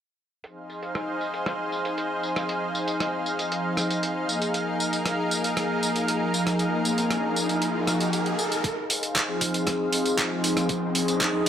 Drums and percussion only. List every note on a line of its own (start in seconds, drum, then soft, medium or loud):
0.44 closed hi-hat medium
0.44 tambourine soft
0.70 tambourine medium
0.83 closed hi-hat soft
0.83 tambourine soft
0.95 cross-stick medium
0.95 closed hi-hat medium
0.95 tambourine soft
1.21 tambourine medium
1.34 closed hi-hat soft
1.34 tambourine soft
1.46 cross-stick medium
1.46 closed hi-hat medium
1.46 tambourine soft
1.72 tambourine medium
1.85 closed hi-hat soft
1.85 tambourine soft
1.98 closed hi-hat medium
1.98 tambourine soft
2.23 tambourine medium
2.36 cross-stick medium
2.36 closed hi-hat soft
2.36 tambourine soft
2.49 closed hi-hat medium
2.49 tambourine soft
2.75 tambourine medium
2.88 closed hi-hat soft
2.88 tambourine soft
3.00 cross-stick medium
3.00 closed hi-hat medium
3.00 tambourine soft
3.26 tambourine medium
3.39 closed hi-hat soft
3.39 tambourine soft
3.52 closed hi-hat medium
3.52 tambourine soft
3.77 cross-stick medium
3.77 tambourine medium
3.91 closed hi-hat soft
3.91 tambourine soft
4.03 closed hi-hat medium
4.03 tambourine soft
4.29 tambourine medium
4.42 closed hi-hat soft
4.42 tambourine soft
4.54 closed hi-hat medium
4.54 tambourine soft
4.80 tambourine medium
4.93 closed hi-hat soft
4.93 tambourine soft
5.06 cross-stick medium
5.06 closed hi-hat medium
5.06 tambourine soft
5.31 tambourine medium
5.44 closed hi-hat soft
5.44 tambourine soft
5.57 cross-stick medium
5.57 closed hi-hat medium
5.57 tambourine soft
5.83 tambourine medium
5.96 closed hi-hat soft
5.96 tambourine soft
6.08 closed hi-hat medium
6.08 tambourine soft
6.34 tambourine medium
6.47 cross-stick medium
6.47 closed hi-hat soft
6.47 tambourine soft
6.59 closed hi-hat medium
6.59 tambourine soft
6.85 tambourine medium
6.98 closed hi-hat soft
6.98 tambourine soft
7.11 cross-stick medium
7.11 closed hi-hat medium
7.11 tambourine soft
7.36 tambourine medium
7.49 closed hi-hat soft
7.49 tambourine soft
7.62 closed hi-hat medium
7.62 tambourine soft
7.87 cross-stick medium
7.87 tambourine medium
8.01 closed hi-hat soft
8.01 tambourine soft
8.13 closed hi-hat medium
8.13 tambourine soft
8.26 closed hi-hat soft
8.39 tambourine medium
8.52 closed hi-hat soft
8.52 tambourine soft
8.64 kick loud
8.64 closed hi-hat medium
8.64 tambourine soft
8.90 open hi-hat loud
8.90 tambourine medium
9.03 closed hi-hat medium
9.03 tambourine soft
9.15 kick loud
9.15 cross-stick medium
9.15 clap loud
9.15 closed hi-hat medium
9.15 tambourine soft
9.41 kick medium
9.41 open hi-hat medium
9.41 tambourine medium
9.54 closed hi-hat medium
9.54 tambourine soft
9.67 kick loud
9.67 cross-stick medium
9.67 closed hi-hat medium
9.67 tambourine soft
9.93 open hi-hat loud
9.93 tambourine medium
10.06 closed hi-hat medium
10.06 tambourine soft
10.18 kick loud
10.18 clap loud
10.18 closed hi-hat medium
10.18 tambourine soft
10.44 open hi-hat loud
10.44 tambourine medium
10.57 cross-stick medium
10.57 closed hi-hat soft
10.57 tambourine soft
10.69 kick loud
10.69 closed hi-hat medium
10.69 tambourine soft
10.95 open hi-hat loud
10.95 tambourine medium
11.08 closed hi-hat medium
11.08 tambourine soft
11.21 kick loud
11.21 cross-stick medium
11.21 clap loud
11.21 closed hi-hat medium
11.21 tambourine soft